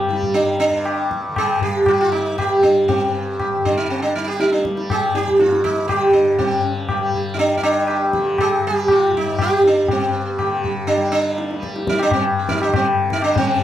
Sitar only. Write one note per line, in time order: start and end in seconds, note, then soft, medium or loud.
0.09 0.33 G4 soft
0.34 0.59 D4 medium
0.60 1.07 D4 loud
1.38 1.62 G#4 loud
1.63 1.88 G4 medium
1.88 1.93 F4 medium
1.93 2.00 G4 medium
2.01 2.11 F4 medium
2.12 2.38 D#4 medium
2.38 2.64 G4 medium
2.63 2.88 D4 medium
2.88 3.65 C4 medium
3.14 3.37 G4 soft
3.40 3.62 G4 soft
3.65 3.77 D4 medium
3.77 3.90 D#4 medium
3.90 4.02 C4 medium
4.02 4.15 D4 medium
4.15 4.28 D#4 medium
4.28 4.39 G4 medium
4.40 4.52 D#4 medium
4.52 4.64 D4 medium
4.91 5.15 G#4 medium
5.15 5.40 G4 medium
5.40 5.64 F4 medium
5.64 5.87 D#4 medium
5.88 6.12 G4 medium
6.13 6.38 D4 medium
6.39 7.10 C4 medium
6.90 7.13 G4 soft
7.14 7.37 G4 soft
7.34 7.39 D#4 medium
7.39 7.57 D4 loud
7.57 7.63 D#4 medium
7.64 8.10 D4 loud
7.89 8.12 G4 soft
8.14 8.37 G4 soft
8.40 8.65 G#4 loud
8.67 8.91 G4 medium
8.92 9.14 F4 medium
9.17 9.41 D#4 medium
9.41 9.66 G4 medium
9.67 9.91 D4 medium
9.91 10.37 C4 medium
10.13 10.37 G4 soft
10.37 10.60 A#3 medium
10.37 10.61 G4 soft
10.63 10.86 G4 soft
10.87 11.11 D4 medium
11.12 11.58 D4 loud
11.62 11.85 G4 soft
11.89 12.01 D#4 medium
12.03 12.13 D4 medium
12.13 12.24 C4 medium
12.39 12.61 G4 soft
12.49 12.62 D#4 medium
12.63 12.75 D4 medium
12.76 12.86 C4 medium
13.13 13.23 D#4 medium
13.24 13.35 D4 medium
13.37 13.63 C4 medium
13.48 13.63 G4 soft